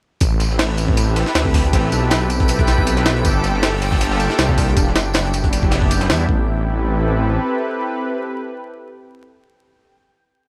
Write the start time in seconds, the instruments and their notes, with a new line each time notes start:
0.20 detuned saw bass A1, synth texture G4 G5, kick, closed hi-hat, tambourine
0.39 snare, closed hi-hat, tambourine
0.50 snare
0.59 snare, closed hi-hat, open hi-hat
0.77 analog synth pad C4 E4 G4 A4 B4, closed hi-hat, tambourine
0.88 kick
0.97 closed hi-hat, tambourine
1.16 snare, closed hi-hat, open hi-hat
1.26 snare
1.35 detuned saw bass D2, snare, closed hi-hat, open hi-hat
1.45 kick, snare
1.54 kick, snare, open hi-hat
1.64 closed hi-hat
1.73 detuned saw bass A1, kick, snare, closed hi-hat, open hi-hat
1.84 snare
1.92 detuned saw bass B1, closed hi-hat, tambourine
2.10 snare, closed hi-hat, tambourine
2.21 closed hi-hat
2.30 analog synth pad C4 E4 G4 A4 B4, closed hi-hat, tambourine
2.40 kick, closed hi-hat
2.48 closed hi-hat, tambourine
2.58 kick, closed hi-hat
2.67 snare, closed hi-hat, tambourine
2.78 kick
2.87 closed hi-hat, tambourine
2.97 snare, closed hi-hat
3.06 snare, closed hi-hat, tambourine
3.16 closed hi-hat
3.25 detuned saw bass G1, kick, closed hi-hat, tambourine
3.43 snare, closed hi-hat, tambourine
3.54 snare
3.63 snare, closed hi-hat, open hi-hat
3.81 analog synth pad A#3 D4 F4 G4 A4, snare, closed hi-hat, open hi-hat
3.91 kick, snare, open hi-hat
4.00 snare, closed hi-hat, open hi-hat
4.11 snare, open hi-hat
4.20 closed hi-hat, tambourine
4.30 snare
4.38 detuned saw bass C2, snare, closed hi-hat, tambourine
4.49 kick, snare
4.58 kick, open hi-hat, tambourine
4.68 closed hi-hat
4.77 detuned saw bass E1, kick, closed hi-hat, tambourine
4.87 snare
4.96 detuned saw bass F#1, snare, closed hi-hat, tambourine
5.14 snare, closed hi-hat, tambourine
5.25 closed hi-hat
5.33 analog synth pad G3 B3 D4 E4 G4, closed hi-hat, tambourine
5.44 kick, closed hi-hat
5.52 snare, closed hi-hat, tambourine
5.62 kick, snare
5.71 snare, closed hi-hat, open hi-hat
5.82 kick
5.91 closed hi-hat, tambourine
6.01 snare, closed hi-hat
6.10 detuned saw bass E2, snare, closed hi-hat, tambourine
6.20 closed hi-hat
6.28 detuned saw bass A1, analog synth pad C4 E4 G4 A4 B4, kick